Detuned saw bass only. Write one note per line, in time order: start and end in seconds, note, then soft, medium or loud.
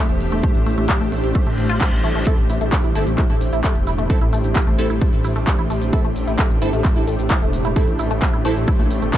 0.09 0.19 E1 medium
0.21 0.30 E1 loud
0.32 0.42 E1 medium
0.55 0.65 A1 medium
0.66 0.76 A1 loud
0.78 0.87 A1 loud
1.01 1.10 A1 medium
1.12 1.22 A1 loud
1.24 1.33 A1 medium
1.47 1.56 A1 medium
1.58 1.68 A1 loud
1.69 1.79 A1 medium
1.92 2.02 A1 medium
2.04 2.13 A1 loud
2.15 2.25 A1 medium
2.38 2.48 A1 medium
2.50 2.59 A1 loud
2.61 2.71 A1 medium
2.84 2.94 A1 medium
2.95 3.05 G1 loud
3.07 3.17 A1 medium
3.30 3.39 A1 medium
3.41 3.51 A1 loud
3.53 3.62 A1 medium
3.75 3.85 E1 medium
3.87 3.97 E1 loud
3.98 4.08 E1 medium
4.21 4.31 A1 medium
4.33 4.42 A1 loud
4.44 4.54 A1 medium
4.67 4.77 A1 medium
4.79 4.88 A1 loud
4.90 5.00 A1 medium
5.13 5.23 A1 medium
5.24 5.34 A1 loud
5.36 5.45 A1 medium
5.59 5.68 A1 medium
5.70 5.80 A1 loud
5.82 5.91 A1 medium
6.04 6.14 A1 medium
6.16 6.26 A1 loud
6.27 6.37 A1 medium
6.50 6.60 A1 medium
6.62 6.71 G1 loud
6.73 6.83 A1 medium
6.96 7.06 A1 medium
7.07 7.17 A1 loud
7.19 7.29 A1 medium
7.42 7.52 E1 medium
7.53 7.63 E1 loud
7.65 7.74 E1 medium
7.88 7.97 A1 medium
7.99 8.09 A1 loud
8.11 8.20 A1 medium
8.33 8.43 A1 medium
8.45 8.55 A1 loud
8.56 8.66 A1 medium
8.79 8.89 A#1 medium
8.91 9.00 A1 loud
9.02 9.12 G1 medium